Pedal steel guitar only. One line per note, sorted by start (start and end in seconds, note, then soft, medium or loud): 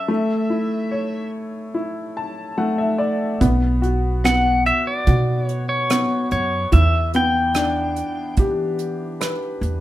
0.00 1.31 E5 medium
4.25 4.63 F#5 medium
4.66 4.87 E5 medium
4.87 5.45 D5 medium
5.45 5.69 C#5 medium
5.69 6.31 C#5 medium
6.32 6.74 C#5 medium
6.73 7.11 E5 medium
7.16 8.35 G5 medium